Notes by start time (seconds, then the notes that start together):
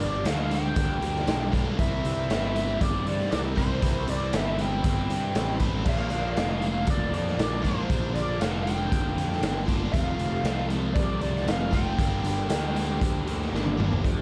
Already playing: G2 D3 G3 A#3 D4 F4 G4 A#4
0.00 G1 D5
0.24 D2 D3 G3 A#3 D4 F5, snare, closed hi-hat
0.50 G3 A#3 D4, closed hi-hat
0.54 G5
0.76 D2 G2 D3 G3 A#3 D4, kick, closed hi-hat
1.01 D2, closed hi-hat
1.16 snare
1.27 B1 D3 G3 A#3 D4, snare, closed hi-hat
1.52 G2 D3 G3 A#3 D4 G4, kick, closed hi-hat
1.77 C2 C3 E3 G3 C4 E4 G4 C5 E5, kick, closed hi-hat
2.04 C2, closed hi-hat
2.29 G1 C3 G3 C4 E4, snare, closed hi-hat
2.55 G3 C4 E4, closed hi-hat
2.80 G1 C3 G3 C4 E4 D5, kick, closed hi-hat
3.05 G2 D5, closed hi-hat
3.20 snare
3.31 C2 C3 G3 C4 E4 D5, snare, closed hi-hat
3.56 C3 E3 G3 C4 E4 C5, kick, closed hi-hat
3.82 C2 C3 E3 G3 C4 E4, kick, closed hi-hat
4.08 C2 D5, closed hi-hat
4.33 G1 C3 G3 C4 E4 E5, snare, closed hi-hat
4.58 G3 C4 E4 G5, closed hi-hat
4.84 G1 C3 G3 C4 E4, kick, closed hi-hat
5.10 G2, closed hi-hat
5.35 A1 C3 G3 C4 E4, snare, closed hi-hat
5.60 C3 E3 G3 C4 E4, kick, closed hi-hat
5.84 A#1 A#2 D3 F3 A#3 D4 F4 A#4, kick, crash
5.89 F5
6.10 A#1, closed hi-hat
6.37 F1 A#2 F3 A#3 D4, snare, closed hi-hat
6.62 F3 A#3 D4, closed hi-hat
6.87 F1 A#2 F3 A#3 D4 D5, kick, closed hi-hat
7.12 F2 D5, closed hi-hat
7.27 snare
7.37 A#1 A#2 F3 A#3 D5, snare, closed hi-hat
7.41 D4
7.62 A#2 D3 F3 A#3 D4 F4 C5, kick, closed hi-hat
7.89 A#1 A#2 D3 F3 A#3 D4 F4, kick, closed hi-hat
8.14 A#1 D5, closed hi-hat
8.40 F1 A#2 F3 A#3 D4 F5, snare, closed hi-hat
8.64 A#3 D4 G5, closed hi-hat
8.68 F3
8.91 F1 A#2 F3 A#3 D4, kick, closed hi-hat
9.16 F2, closed hi-hat
9.32 snare
9.42 G1 A#2 F3 A#3 D4, snare, closed hi-hat
9.65 A#2 D3 A#3 D4 F4, kick, closed hi-hat
9.70 F3
9.92 F1 F2 C3 F3 A3 C4 F4 A4 F5, kick, closed hi-hat
10.17 F1, closed hi-hat
10.43 C2 C3 F3 A3, snare, closed hi-hat
10.47 C4
10.70 F3 A3 C4, closed hi-hat
10.94 C2 F2 C3 F3 A3 C4 D5, kick, closed hi-hat
11.21 C2 D5, closed hi-hat
11.36 snare
11.46 F1 C3 F3 A3 C4 F5, snare, closed hi-hat
11.71 F2 C3 F3 A3 C4 F4 G5, kick, closed hi-hat
11.97 G1 G2 D3 G3 A#3 D4 G4 A#4, kick, closed hi-hat
12.24 G1, closed hi-hat
12.49 D2 D3 G3 A#3 D4, snare, closed hi-hat
12.76 G3 A#3 D4, closed hi-hat
13.01 D2 G2 D3 G3 A#3 D4, kick, closed hi-hat
13.26 D2, closed hi-hat
13.42 snare
13.52 G1 D3 G3 A#3 D4, snare
13.67 high tom
13.77 G2 D3 G3 A#3 D4 G4, mid tom
13.93 floor tom
14.03 D2 D3 F3 A3 D4 G4, kick, closed hi-hat